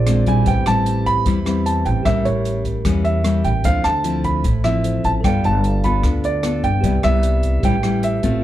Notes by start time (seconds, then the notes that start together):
Already playing: A#1 A#2 F4 G#4 C5 D5
0.07 G#3 C4 D4, cross-stick, closed hi-hat
0.26 A#1 G3 C4 E4 G#5, kick, closed hi-hat
0.45 A1 A2 G4 B4 G5, kick, closed hi-hat
0.49 C5 E5
0.66 A1 G3 C4 E4 A5, cross-stick, closed hi-hat
0.86 closed hi-hat
1.06 B5, kick, closed hi-hat
1.26 E2 E3 G3 C4 E4, kick, closed hi-hat
1.45 G3 C4 E4 G4 B4 C5 E5, cross-stick, closed hi-hat
1.66 A5, closed hi-hat
1.85 A1 G5, kick, closed hi-hat
2.03 A1 A2 G3 A#3 C#4 G4 A#4 E5, kick, cross-stick, closed hi-hat
2.07 C#5 E5
2.25 A1 C#5, closed hi-hat
2.45 closed hi-hat
2.65 kick, closed hi-hat
2.85 E2 E3 G3 A#3 C#4, kick, cross-stick, closed hi-hat
3.05 E5, closed hi-hat
3.24 G3 A#3 C#4, cross-stick, closed hi-hat
3.44 A1 G5, kick, closed hi-hat
3.64 D2 D3 F3 C4 E4 A4 C5 F5, kick, closed hi-hat
3.68 E5
3.84 D2 A5, cross-stick, closed hi-hat
4.04 F3 C4 E4, closed hi-hat
4.24 B5, kick, closed hi-hat
4.44 A1 A2, kick, closed hi-hat
4.64 F3 C4 E4 E5, cross-stick, closed hi-hat
4.84 A4 C5 E5, closed hi-hat
5.04 A1 A5, kick, closed hi-hat
5.21 G1 G3 A4 B4 G5, kick, cross-stick, closed hi-hat
5.25 B3 F4 A4 D5 F5
5.44 G1 A5, closed hi-hat
5.64 closed hi-hat
5.84 B3 F4 A4 B5, kick, closed hi-hat
6.03 D2 D3, kick, cross-stick, closed hi-hat
6.24 D5, closed hi-hat
6.43 B3 F4 A4, cross-stick, closed hi-hat
6.63 G1 G5, kick, closed hi-hat
6.81 C2 C3 G3 B3 E4 G4 B4, kick, closed hi-hat
6.85 D5 E5
7.03 C2 G3 B3 E4 E5, cross-stick, closed hi-hat
7.23 closed hi-hat
7.43 kick, closed hi-hat
7.60 A1 A2 G3 C#4 G4 B4, kick, closed hi-hat
7.65 E4 C#5 E5 G5
7.83 G3 C#4 E4, cross-stick, closed hi-hat
8.03 E5, closed hi-hat
8.23 A1 A3 C4 F4, kick, closed hi-hat